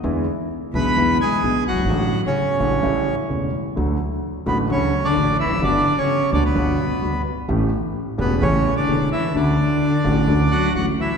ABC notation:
X:1
M:4/4
L:1/16
Q:1/4=129
K:D
V:1 name="Bandoneon"
z6 [Bb]4 [^G^g]4 [Ff]2- | [Ff]3 [Cc]8 z4 z | z6 [B,B]2 [Cc]3 [Dd]3 [Ee]2 | [Dd]3 [Cc]3 [Dd] [B,B]6- [B,B] z2 |
z6 [B,B]2 [Cc]3 [Dd]3 [Ee]2 | [Dd]8- [Dd]2 [Ff]2 [Ff]2 [Ee]2 |]
V:2 name="Grand piano" clef=bass
[E,,D,E,^G,B,E]2 z4 [B,,,B,,D,G,B,E]2 [E,,D,E,G,B,E]2 z2 [B,,,B,,D,G,B,E]2 z/2 F,,,/2 =G,,,/2 ^G,,,/2 | [A,,,A,,D,F,A,F]2 z4 [A,,,A,,D,F,A,F]2 [A,,,A,,C,G,A,E]2 z2 [E,,,E,,C,G,A,E]2 z2 | [D,,D,F,A,F]2 z4 [A,,,A,,D,F,A,F]2 [D,,D,F,A,F]2 z2 [A,,,A,,D,F,A,F]2 z/2 E,,/2 =F,,/2 ^F,,/2 | [G,,,G,,D,G,B,F]2 z4 [D,,D,G,B,F]2 [G,,,G,,D,G,B,F]2 z2 [D,,D,G,B,F]2 z2 |
[A,,,A,,E,A,CG]2 z4 [E,,,E,,E,A,CG]2 [A,,,A,,E,A,CG]2 z2 [E,,,E,,E,A,CG]2 z2 | [D,,D,A,CF]2 z4 [A,,,A,,D,A,CF]2 [D,,D,A,CF]2 z2 [A,,,A,,D,A,CF]2 z2 |]
V:3 name="Cello" clef=bass
z6 B,4 ^G,4 F,2- | F,3 C,8 z4 z | z6 B,,2 C,3 D,3 E,2 | D,3 C,3 D, B,,6- B,, z2 |
z6 B,,2 C,3 D,3 E,2 | D,8- D,2 F,2 F,2 E,2 |]
V:4 name="Upright bass" clef=bass
E,,3/2 z4 z/2 B,,,3/2 z/2 E,,3/2 z2 z/2 B,,,3/2 z F,,,/2 G,,,/2 ^G,,,/2 | A,,,3/2 z4 z/2 A,,,3/2 z/2 A,,,3/2 z2 z/2 E,,,3/2 z2 z/2 | D,,3/2 z4 z/2 A,,,3/2 z/2 D,,3/2 z2 z/2 A,,,3/2 z E,,,/2 =F,,,/2 ^F,,,/2 | G,,,3/2 z4 z/2 D,,3/2 z/2 G,,,3/2 z2 z/2 D,,3/2 z2 z/2 |
A,,,3/2 z4 z/2 E,,,3/2 z/2 A,,,3/2 z2 z/2 E,,,3/2 z2 z/2 | D,,3/2 z4 z/2 A,,,3/2 z/2 D,,3/2 z2 z/2 A,,,3/2 z2 z/2 |]